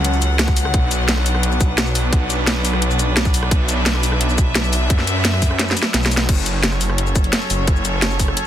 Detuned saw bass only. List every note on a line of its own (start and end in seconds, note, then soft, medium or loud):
0.00 0.20 C#2 loud
0.22 0.73 C#2 loud
0.74 2.11 B1 loud
2.13 3.50 B1 loud
3.51 4.89 B1 loud
4.90 5.75 F#2 loud
5.94 6.27 B1 loud
6.29 6.79 F#1 loud
6.81 7.31 F#1 loud
7.50 8.36 F#1 loud